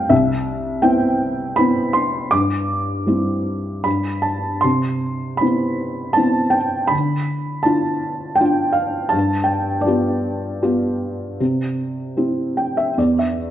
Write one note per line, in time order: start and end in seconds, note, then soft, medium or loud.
0.00 0.13 G3 soft
0.00 0.13 A3 soft
0.00 0.13 F4 soft
0.00 0.13 F5 medium
0.00 0.11 G5 medium
0.09 2.28 C2 medium
0.09 0.86 E5 medium
0.82 1.54 B3 soft
0.82 1.55 C4 soft
0.82 1.55 E4 soft
0.82 1.53 G5 medium
1.56 2.30 B3 soft
1.56 2.30 C4 soft
1.56 2.31 E4 soft
1.56 1.95 B5 medium
1.93 2.33 C6 medium
2.31 3.81 G2 medium
2.31 3.03 D6 medium
3.06 3.82 G3 soft
3.06 3.83 C4 soft
3.06 3.83 E4 soft
3.84 4.61 G2 soft
3.84 4.25 B5 medium
4.22 4.64 A5 medium
4.61 6.89 C3 soft
4.61 5.43 C6 medium
5.37 6.15 B3 soft
5.37 6.15 C4 soft
5.37 6.18 B5 medium
5.41 6.15 E4 soft
6.13 6.90 B3 soft
6.13 6.90 C4 soft
6.13 6.90 E4 soft
6.13 6.54 A5 medium
6.50 6.91 G5 medium
6.88 9.09 D3 medium
6.88 7.60 B5 medium
7.63 8.37 D4 soft
7.63 8.37 E4 soft
7.63 8.38 F4 soft
7.63 8.41 A5 medium
8.36 8.76 G5 medium
8.40 9.11 D4 soft
8.40 9.12 F4 soft
8.72 9.12 F5 medium
9.09 11.35 G2 medium
9.09 9.49 A5 medium
9.44 9.85 G5 medium
9.81 12.91 D5 medium
9.86 10.61 B3 soft
9.86 10.60 F4 soft
9.86 10.61 G4 soft
10.63 11.37 B3 soft
10.63 11.37 F4 soft
10.63 11.37 G4 soft
11.40 12.94 C3 medium
12.17 12.95 C4 soft
12.17 12.95 E4 soft
12.17 12.95 G4 soft
12.57 12.76 G5 medium
12.77 12.96 E5 medium
12.98 13.51 E2 soft
12.98 13.17 D5 soft
13.19 13.51 E5 soft